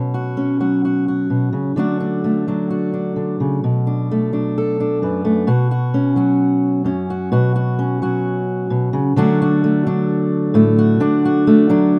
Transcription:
0.00 1.29 B2 medium
0.00 0.60 F#3 soft
0.14 0.60 F#4 soft
0.37 1.74 C#4 soft
0.60 1.77 F#3 soft
0.60 0.84 F#4 soft
0.85 1.08 F#4 soft
1.08 1.79 F#4 soft
1.30 1.52 B2 soft
1.53 1.76 C#3 soft
1.76 3.15 D3 medium
1.76 2.47 F#3 soft
1.76 2.24 A3 soft
1.76 2.00 D4 soft
1.76 2.70 F#4 medium
2.00 2.48 D4 soft
2.24 4.09 A3 soft
2.48 4.32 F#3 soft
2.48 2.92 D4 soft
2.70 4.55 F#4 soft
2.94 3.60 D4 soft
3.16 3.39 D3 soft
3.40 3.63 C#3 soft
3.64 5.02 B2 medium
3.87 4.32 D4 soft
4.11 5.24 A3 soft
4.32 5.45 F#3 soft
4.32 4.79 D4 soft
4.58 5.02 A4 soft
4.80 5.46 D4 soft
5.02 5.48 F#2 soft
5.02 5.45 B4 soft
5.25 5.48 A3 soft
5.47 6.86 B2 medium
5.47 5.71 F#4 medium
5.71 6.17 F#4 soft
5.94 6.84 C#4 soft
6.16 8.01 F#3 soft
6.16 7.10 F#4 soft
6.84 7.31 F#2 soft
6.84 7.29 C#4 soft
7.10 7.32 F#4 medium
7.32 8.69 B2 medium
7.32 7.55 F#4 medium
7.56 8.02 F#4 medium
7.79 9.14 C#4 medium
8.02 9.17 F#3 medium
8.02 9.18 F#4 medium
8.70 8.93 B2 medium
8.93 9.16 C#3 medium
9.16 10.97 D3 medium
9.16 9.86 F#3 medium
9.16 9.63 A3 medium
9.16 9.86 D4 medium
9.16 9.41 F#4 medium
9.42 10.78 F#4 medium
9.64 10.54 A3 medium
9.86 11.69 F#3 medium
9.86 10.98 D4 medium
10.54 10.97 A2 medium
10.54 11.46 A3 medium
10.79 11.24 F#4 medium
11.00 11.99 D3 medium
11.00 11.69 D4 medium
11.25 11.99 F#4 medium
11.47 11.99 A3 medium
11.69 11.99 F#3 medium
11.69 11.99 D4 medium

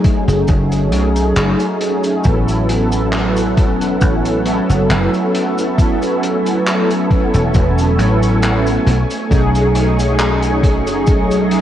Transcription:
0.00 0.87 F#3 medium
0.00 0.87 A3 medium
0.00 0.88 C#4 medium
0.00 0.88 D#4 medium
0.00 0.89 G#4 loud
0.04 kick loud
0.04 closed hi-hat medium
0.28 0.42 F#1 loud
0.28 closed hi-hat medium
0.28 cabasa medium
0.48 0.92 F#1 medium
0.48 kick loud
0.48 closed hi-hat medium
0.48 cabasa medium
0.72 closed hi-hat medium
0.72 cabasa soft
0.91 1.36 B1 medium
0.91 2.19 F#3 medium
0.91 2.20 A3 medium
0.91 2.20 C#4 medium
0.91 2.21 D#4 medium
0.91 2.21 G#4 loud
0.91 closed hi-hat medium
1.16 closed hi-hat medium
1.16 cabasa medium
1.36 1.54 F#1 medium
1.36 clap loud
1.36 closed hi-hat medium
1.36 cabasa medium
1.60 closed hi-hat soft
1.60 cabasa soft
1.81 closed hi-hat medium
2.04 closed hi-hat medium
2.04 cabasa medium
2.23 3.81 A1 medium
2.23 4.40 F#3 loud
2.23 11.61 A3 medium
2.23 4.40 B3 medium
2.23 4.41 C#4 medium
2.23 4.41 E4 medium
2.23 4.42 A4 loud
2.23 8.83 E5 medium
2.23 5.75 F#5 medium
2.23 11.61 C#6 medium
2.23 kick loud
2.23 closed hi-hat medium
2.23 cabasa medium
2.48 closed hi-hat medium
2.48 cabasa soft
2.69 closed hi-hat medium
2.92 closed hi-hat medium
2.92 cabasa medium
3.13 clap loud
3.13 closed hi-hat medium
3.13 cabasa medium
3.37 closed hi-hat medium
3.37 cabasa soft
3.57 kick loud
3.57 closed hi-hat medium
3.81 4.02 E1 loud
3.81 closed hi-hat medium
3.81 cabasa medium
4.01 4.59 A1 medium
4.01 kick loud
4.01 closed hi-hat medium
4.01 cabasa medium
4.25 closed hi-hat medium
4.25 cabasa soft
4.44 5.72 F#3 loud
4.44 5.73 B3 medium
4.44 5.73 C#4 medium
4.44 5.73 E4 medium
4.44 5.74 A4 loud
4.44 closed hi-hat medium
4.70 4.84 F#1 medium
4.70 closed hi-hat soft
4.70 cabasa medium
4.90 5.07 F#1 medium
4.90 clap loud
4.90 closed hi-hat medium
4.90 cabasa medium
5.14 closed hi-hat soft
5.14 cabasa soft
5.35 closed hi-hat loud
5.58 closed hi-hat soft
5.58 cabasa medium
5.76 7.93 F#3 medium
5.76 7.93 B3 medium
5.76 7.94 C#4 medium
5.76 7.94 E4 medium
5.76 7.94 A4 loud
5.76 11.61 G#5 medium
5.76 kick loud
5.76 closed hi-hat medium
5.76 cabasa medium
6.02 closed hi-hat medium
6.02 cabasa soft
6.23 closed hi-hat medium
6.46 closed hi-hat medium
6.46 cabasa medium
6.67 clap loud
6.67 closed hi-hat medium
6.67 cabasa medium
6.91 closed hi-hat medium
6.91 cabasa soft
7.11 kick loud
7.11 closed hi-hat medium
7.34 7.49 E1 medium
7.34 closed hi-hat soft
7.34 cabasa medium
7.54 7.98 E1 medium
7.54 kick loud
7.54 closed hi-hat medium
7.54 cabasa medium
7.78 closed hi-hat medium
7.78 cabasa soft
7.98 8.77 A1 medium
7.98 8.84 F#3 medium
7.98 8.84 B3 medium
7.98 8.84 C#4 medium
7.98 8.85 E4 medium
7.98 8.85 A4 loud
7.98 closed hi-hat medium
8.23 closed hi-hat medium
8.23 cabasa medium
8.42 clap loud
8.42 closed hi-hat medium
8.42 cabasa medium
8.67 closed hi-hat medium
8.67 cabasa soft
8.86 9.04 B1 loud
8.86 11.61 D#5 medium
8.86 closed hi-hat medium
9.11 closed hi-hat medium
9.11 cabasa medium
9.29 10.87 B1 medium
9.29 11.46 F#3 loud
9.29 11.46 A3 medium
9.29 11.47 C#4 medium
9.29 11.47 D#4 medium
9.29 11.47 G#4 loud
9.29 kick loud
9.29 closed hi-hat medium
9.29 cabasa medium
9.55 closed hi-hat soft
9.55 cabasa soft
9.75 closed hi-hat loud
10.00 closed hi-hat medium
10.00 cabasa medium
10.19 clap loud
10.19 closed hi-hat medium
10.19 cabasa medium
10.43 closed hi-hat medium
10.43 cabasa soft
10.63 kick medium
10.63 closed hi-hat medium
10.87 11.08 F#1 loud
10.87 closed hi-hat medium
10.87 cabasa medium
11.07 11.61 B1 medium
11.07 kick loud
11.07 closed hi-hat medium
11.07 cabasa medium
11.31 closed hi-hat medium
11.31 cabasa soft
11.50 11.61 F#3 loud
11.50 11.61 A3 medium
11.50 11.61 C#4 medium
11.50 11.61 D#4 medium
11.50 11.61 G#4 loud
11.50 closed hi-hat medium

